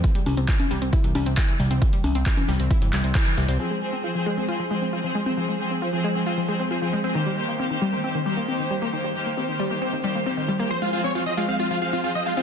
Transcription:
<<
  \new Staff \with { instrumentName = "Supersaw synth" } { \time 4/4 \key f \minor \tempo 4 = 135 r1 | r1 | r1 | r1 |
r1 | r1 | c''16 f'16 f'16 des''16 f'16 ees''16 f'16 f''16 f'16 f'16 f''16 f'16 f'16 ees''16 f'16 f'16 | }
  \new Staff \with { instrumentName = "String section" } { \time 4/4 \key f \minor r1 | r1 | <f c' aes' c''>8 <f c' aes' c''>8 <f c' aes' c''>16 <f c' aes' c''>8 <f c' aes' c''>16 <f c' aes' c''>8 <f c' aes' c''>8 <f c' aes' c''>16 <f c' aes' c''>8 <f c' aes' c''>16 | <f c' aes' c''>8 <f c' aes' c''>8 <f c' aes' c''>16 <f c' aes' c''>8 <f c' aes' c''>16 <f c' aes' c''>8 <f c' aes' c''>8 <f c' aes' c''>16 <f c' aes' c''>8 <f c' aes' c''>16 |
<ees bes g' c''>8 <ees bes g' c''>8 <ees bes g' c''>16 <ees bes g' c''>8 <ees bes g' c''>16 <ees bes g' c''>8 <ees bes g' c''>8 <ees bes g' c''>16 <ees bes g' c''>8 <ees bes g' c''>16 | <ees bes g' c''>8 <ees bes g' c''>8 <ees bes g' c''>16 <ees bes g' c''>8 <ees bes g' c''>16 <ees bes g' c''>8 <ees bes g' c''>8 <ees bes g' c''>16 <ees bes g' c''>8 <ees bes g' c''>16 | <f c' aes' c''>8 <f c' aes' c''>8 <f c' aes' c''>16 <f c' aes' c''>8 <f c' aes' c''>16 <f c' aes' c''>8 <f c' aes' c''>8 <f c' aes' c''>16 <f c' aes' c''>8 <f c' aes' c''>16 | }
  \new Staff \with { instrumentName = "Synth arpeggio sound" } { \clef bass \time 4/4 \key f \minor e16 g16 r16 c'16 e'16 e16 g16 c'16 e'16 e16 g16 c'16 e'16 e16 g16 c'16 | e16 g16 r16 c'16 e'16 e16 g16 c'16 e'16 e16 g16 c'16 e'16 e16 g16 c'16 | f16 aes16 r16 c'16 f'16 f16 aes16 c'16 f'16 f16 aes16 c'16 f'16 f16 aes16 c'16 | f16 aes16 r16 c'16 f'16 f16 aes16 c'16 f'16 f16 aes16 c'16 f'16 f16 aes16 c'16 |
ees16 g16 r16 bes16 c'16 ees16 g16 bes16 c'16 ees16 g16 bes16 c'16 ees16 g16 bes16 | ees16 g16 r16 bes16 c'16 ees16 g16 bes16 c'16 ees16 g16 bes16 c'16 ees16 g16 bes16 | f16 aes16 r16 c'16 f'16 f16 aes16 c'16 f'16 f16 f'16 c'16 f'16 f16 aes16 c'16 | }
  \new Staff \with { instrumentName = "Analog synth bass" } { \clef bass \time 4/4 \key f \minor r8 c,16 c,16 r8 c,16 c,16 r16 c,16 c,16 c,16 r8 c,16 c,16 | r8 c,16 c,16 r8 c,16 c,16 r16 g,,16 c,16 c,16 r8 c,16 c,16 | r1 | r1 |
r1 | r1 | r1 | }
  \new DrumStaff \with { instrumentName = "Drums" } \drummode { \time 4/4 <hh bd>16 hh16 <cgho hho>16 hh16 <hc hh bd>16 <cgho hh>16 hho16 hh16 <hh bd>16 hh16 <cgho hho>16 hh16 <hc hh bd>16 hh16 hho16 hh16 | <hh bd>16 hh16 <cgho hho>16 hh16 <hc hh bd>16 <cgho hh>16 hho16 hh16 <hh bd>16 hh16 <hc hho>16 hh16 <hc hh bd>16 hh16 hho16 hh16 | r4 r4 r4 r4 | r4 r4 r4 r4 |
r4 r4 r4 r4 | r4 r4 r4 r4 | r4 r4 r4 r4 | }
>>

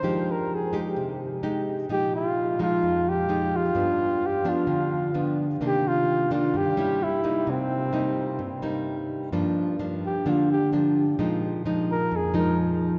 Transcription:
<<
  \new Staff \with { instrumentName = "Flugelhorn" } { \time 4/4 \key g \phrygian \tempo 4 = 129 c''8 bes'8 aes'8 g'4 r4. | g'8 f'4 f'4 g'4 f'8~ | f'4 g'8 f'2 r8 | g'8 f'4 f'8 g'4 e'4 |
c'2. r4 | r4. g'8 f'8 g'8 r4 | r4. bes'8 aes'8 bes'8 r4 | }
  \new Staff \with { instrumentName = "Nylon-string guitar" } { \clef bass \time 4/4 \key g \phrygian << { <aes ees' g'>4. <aes ees' g'>4. <aes ees' g'>4 | <f aes ees'>4. <f aes ees'>4. <f aes ees'>4 | <f b d'>4 r8 <f b d'>4. <f b d'>8 r8 | <ees bes d'>4. <ees bes d'>4 <g des' e'>4 <g bes ees'>8~ |
<g bes ees'>4 <g bes ees'>4 r8 <g bes ees'>4. | <f bes d'>4 <f bes d'>4 <f bes d'>8 r8 <f bes d'>8 r8 | <f aes ees'>4 <f aes ees'>4 r8 <f aes ees'>4. | } \\ { f2 c2 | bes,2 f,2 | g,2 d2 | c2 g,4 r4 |
c2 g,2 | g,2 d2 | bes,2 f,2 | } >> }
>>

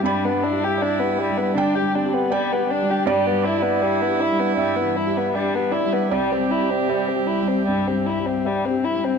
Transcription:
<<
  \new Staff \with { instrumentName = "Ambient pad" } { \time 4/4 \key c \major \tempo 4 = 79 <g g' d''>1 | <g g' e''>1~ | <g g' e''>1 | }
  \new Staff \with { instrumentName = "Felt piano" } { \time 4/4 \key c \major << { b''2 g''4 g''4 | d''2 e''4. d''8 | d''4 c''2 r4 | } \\ { \tuplet 3/2 { g,8 g8 g'8 d''8 g'8 g8 d8 g8 g'8 d''8 g'8 g8 } | \tuplet 3/2 { g,8 g8 g'8 e''8 g'8 g8 g,8 e8 g'8 e''8 g'8 g8 } | \tuplet 3/2 { c,8 g8 g'8 e''8 g'8 g8 g,8 g8 g'8 e''8 g'8 g8 } | } >> }
  \new Staff \with { instrumentName = "Cello" } { \time 4/4 \key c \major d'8 e'4. d'8 c'8 b8 d'8 | g'8 e'2~ e'8 d'8 e'8 | g'2.~ g'8 r8 | }
  \new Staff \with { instrumentName = "Violin" } { \time 4/4 \key c \major g16 b16 d'16 g'16 d'16 b16 g16 b16 d'16 g'16 d'16 b16 g16 b16 d'16 g'16 | g16 b16 e'16 b16 g16 b16 e'16 b16 g16 b16 e'16 b16 g16 b16 e'16 b16 | g16 c'16 e'16 c'16 g16 c'16 e'16 c'16 g16 c'16 e'16 c'16 g16 c'16 e'16 c'16 | }
>>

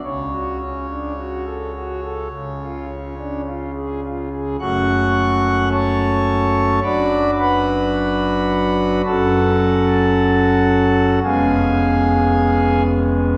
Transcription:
<<
  \new Staff \with { instrumentName = "Pipe organ" } { \time 4/4 \key fis \minor \tempo 4 = 54 << { cis''2. r4 | <fis'' cis''' fis'''>4 <cis'' a'' cis'''>4 <d'' b'' d'''>8 <b' fis'' b''>4. | <a' fis'' a''>2 <gis' eis'' gis''>4. r8 | } \\ { cis16 fis'16 cis'16 d'16 fis'16 a'16 fis'16 a'16 cis16 eis'16 cis'16 d'16 eis'16 gis'16 eis'16 gis'16 | <fis, a cis' fis'>2 <fis, fis d' fis'>2 | <fis, fis cis' fis'>2 <eis, gis b cis'>2 | } >> }
  \new Staff \with { instrumentName = "Pipe organ" } { \clef bass \time 4/4 \key fis \minor cis,2 cis,2 | fis,,2 fis,,2 | fis,,2 eis,,2 | }
>>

